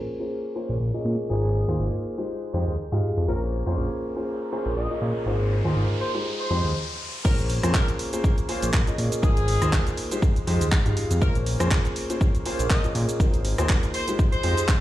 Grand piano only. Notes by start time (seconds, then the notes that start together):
Already playing: A#3 C#4 F4 G#4 C5
0.19 A#3 C#4 F4 G#4 C5
0.55 A#3 C#4 F4 G#4 C5
0.93 A#3 C#4 F4 G#4 D#5
1.29 A#3 D#4 F4 G#4 C5
1.68 A#3 D#4 F4 G#4 C5
2.17 G#3 D#4 F4 G4 C5
2.53 G#3 D#4 F4 G4 C5
2.92 G#3 D#4 F4 G4 F5
3.28 A#3 C#4 F4 G#4 C5
3.66 A#3 C#4 F4 G#4 C5
4.16 A#3 C#4 F4 G#4 C5
4.52 A#3 C#4 F4 G#4 C5
4.90 A#3 C#4 F4 G#4 D#5
5.26 A#3 D#4 F4 G#4 C5
5.64 A#3 D#4 F4 G#4 C5
6.14 G#3 D#4 F4 G4 C5
6.50 G#3 D#4 F4 G4 C5
7.25 A#3 C#4 F4 G#4 C5
7.63 A#3 C#4 F4 G#4 C5
8.13 A#3 C#4 F4 G#4 C5
8.48 A#3 C#4 F4 G#4 C5
8.87 A#3 C#4 F4 G#4 D#5
9.23 A#3 D#4 F4 G#4 C5
9.61 A#3 D#4 F4 G#4 C5
10.11 G#3 D#4 F4 G4 C5
10.47 G#3 D#4 F4 G4 C5
10.85 G#3 D#4 F4 G4 F5
11.21 A#3 C#4 F4 G#4 C5
11.59 A#3 C#4 F4 G#4 C5
12.09 A#3 C#4 F4 G#4 C5
12.45 A#3 C#4 F4 G#4 C5
12.84 A#3 C#4 F4 G#4 D#5
13.19 A#3 D#4 F4 G#4 C5
13.58 A#3 D#4 F4 G#4 C5
14.08 G#3 D#4 F4 G4 C5
14.43 G#3 D#4 F4 G4 C5